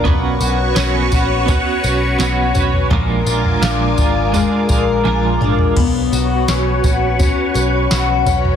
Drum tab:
CC |----------------|----------------|x---------------|
TB |--x-x-x-x-x-x-x-|--x-x-x-x-x-----|--x-x-x-x-x-x-x-|
SD |----o-------o---|----o-----------|----o-------o---|
T1 |----------------|------------o---|----------------|
T2 |----------------|--------------o-|----------------|
FT |o-------o-----oo|o--o----o------o|o-------o-----oo|
BD |o-----o-o-------|o-----o---o-----|o-----o-o-------|